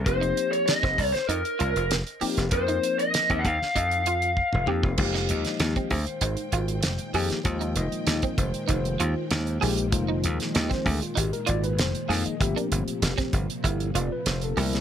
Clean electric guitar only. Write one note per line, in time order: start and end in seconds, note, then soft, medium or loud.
0.21 0.46 D#4 medium
0.83 1.08 C4 medium
1.29 1.53 D#4 medium
1.59 1.84 F4 medium
2.21 2.46 G4 medium
2.68 2.93 D#4 medium
3.30 3.54 C4 medium
3.76 4.00 D#4 medium
4.07 4.31 F4 medium
4.68 4.93 G4 medium
5.14 5.39 D#4 medium
5.77 6.01 C4 medium
6.22 6.47 D#4 medium
6.53 6.78 F4 medium
7.15 7.39 G#4 medium
7.61 7.86 D#4 medium
8.23 8.48 C4 medium
8.68 8.93 D#4 medium
9.00 9.25 F4 medium
9.61 9.86 G#4 medium
10.08 10.33 D#4 medium
10.70 10.95 C4 medium
11.15 11.40 D#4 medium
11.46 11.71 F4 medium
12.09 12.34 G#4 medium
12.56 12.81 D4 medium
13.18 13.42 C4 medium
13.64 13.88 E4 medium
13.95 14.20 F4 medium
14.57 14.81 G4 medium